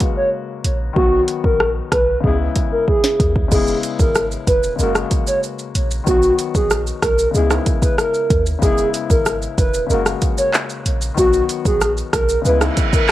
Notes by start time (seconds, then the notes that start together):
Already playing: C#3 G#3 A#3 F#4
0.00 kick, closed hi-hat
0.17 C#5
0.64 A#1, closed hi-hat
0.93 B1 D#3 F#3 F#4, kick
0.98 B3 F#4
1.28 closed hi-hat
1.44 A#1 A#4, kick
1.60 cross-stick
1.92 B1 B4, kick, cross-stick, closed hi-hat
2.21 C#2 C#3 G#3 G#4, kick
2.25 B3 E4
2.56 kick, closed hi-hat
2.72 A#4
2.88 G#4, kick
3.04 snare
3.20 D#2, kick, closed hi-hat
3.36 kick
3.48 E1 C#3 G#3 G#4, kick, crash, maracas, shaker
3.53 B3 E4
3.67 maracas, shaker
3.83 closed hi-hat, shaker, maracas
3.99 G#1 A#4, kick, maracas, shaker
4.15 cross-stick, maracas, shaker
4.31 maracas, shaker
4.47 E1 B4, kick, closed hi-hat, shaker, maracas
4.63 maracas, shaker
4.76 F#1 C#3 G#3 A#4, maracas, shaker
4.81 A#3 F#4
4.95 cross-stick, maracas, shaker
5.11 kick, closed hi-hat, shaker, maracas
5.27 C#5, maracas, shaker
5.43 shaker, maracas
5.59 maracas, shaker
5.75 A#1, closed hi-hat, shaker
5.91 shaker, maracas
6.04 B1 D#3 F#3 F#4, kick, maracas, shaker
6.08 B3 F#4
6.22 maracas, shaker
6.39 closed hi-hat, shaker, maracas
6.55 A#1 G#4, kick, maracas, shaker
6.70 cross-stick, maracas, shaker
6.87 shaker, maracas
7.03 B1 A#4, kick, cross-stick, closed hi-hat, shaker, maracas
7.18 maracas, shaker
7.31 C#2 C#3 G#3 G#4, maracas, shaker
7.36 B3 E4
7.51 cross-stick, high timbale, maracas, shaker
7.66 kick, closed hi-hat, shaker, maracas
7.82 B4, kick, maracas, shaker
7.98 A#4, cross-stick, shaker, maracas
8.14 shaker, maracas
8.30 D#2, kick, closed hi-hat, shaker
8.46 shaker, maracas
8.59 E1 C#3 G#3 G#4, kick, maracas, shaker
8.64 B3 E4
8.78 maracas, shaker
8.94 closed hi-hat, shaker, maracas
9.10 G#1 A#4, kick, maracas, shaker
9.26 cross-stick, maracas, shaker
9.42 shaker, maracas
9.58 E1 B4, kick, closed hi-hat, shaker, maracas
9.74 maracas, shaker
9.87 F#1 C#3 G#3 A#4, maracas, shaker
9.91 A#3 F#4
10.06 cross-stick, maracas, shaker
10.22 kick, closed hi-hat, shaker, maracas
10.38 C#5, maracas, shaker
10.54 clap, shaker, maracas
10.69 shaker, maracas
10.86 A#1, closed hi-hat, shaker
11.01 shaker, maracas
11.14 B1 D#3 F#3 F#4, kick, maracas, shaker
11.19 B3 F#4
11.33 maracas, shaker
11.49 closed hi-hat, shaker, maracas
11.65 A#1 G#4, kick, shaker, maracas
11.81 cross-stick, maracas, shaker
11.97 shaker, maracas
12.13 B1 A#4, kick, cross-stick, closed hi-hat, shaker, maracas
12.29 maracas, shaker
12.42 C#2 C#3 G#3 B4, reverse cymbal, maracas, shaker
12.46 B3 E4
12.61 cross-stick, high timbale, maracas, shaker
12.77 kick, closed hi-hat, shaker, maracas
12.93 A#4, kick, maracas, shaker